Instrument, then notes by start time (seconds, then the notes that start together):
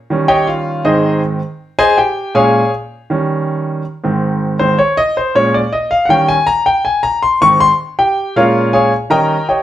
grand piano
0.10 D#3 G3 C#4
0.28 G4 C#5 D#5 G5
0.47 F4 F5
0.85 G#2 D#3 C4 D#4 G#4 C5 D#5
1.79 G#4 C5 D#5 G#5
1.98 G4 G5
2.35 A#2 G#3 C#4 G#4 C#5 F5 G#5
3.10 D#3 G3 C#4
4.04 G#2 D#3 C4
4.59 G#2 D#3 C4 C5
4.79 C#5
4.97 D#5
5.17 C5
5.35 A#2 G#3 C#4 C#5
5.54 D5
5.73 D#5
5.91 F5
6.05 D#3 F#5
6.10 G3 C#4 G5
6.28 G#5
6.47 A#5
6.66 G5
6.85 G#5
7.03 A#5
7.23 C6
7.41 G#2 D#3 C4 C#6
7.60 C6
7.99 G4 G5
8.36 A#2 G#3 C#4 F4 A#4 C#5 F5
8.73 G#4 C#5 F5 G#5
9.10 D#3 G3 C#4 A#4 D#5 G5 A#5
9.49 G4 C#5 D#5 G5